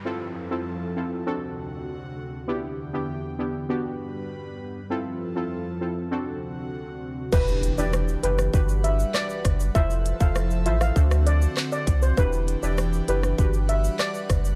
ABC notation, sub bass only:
X:1
M:4/4
L:1/16
Q:1/4=99
K:Em
V:1 name="Sub bass" clef=bass
z16 | z16 | z16 | E,,,3 E,,,3 F,,,2 G,,,4 z2 F,,,2 |
=F,,,3 F,,,3 A,,,2 D,,4 z2 C,,2 | E,,,3 E,,,3 F,,,2 G,,,4 z2 F,,,2 |]